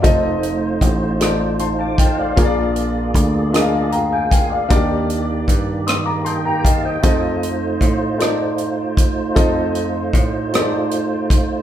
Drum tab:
HH |xxxxxx|xxxxxx|xxxxxx|xxxxxx|
SD |---r--|---r--|---r--|---r--|
BD |o-o--o|o-o--o|o-o--o|o-o--o|

HH |xxxxxx|
SD |---r--|
BD |o-o--o|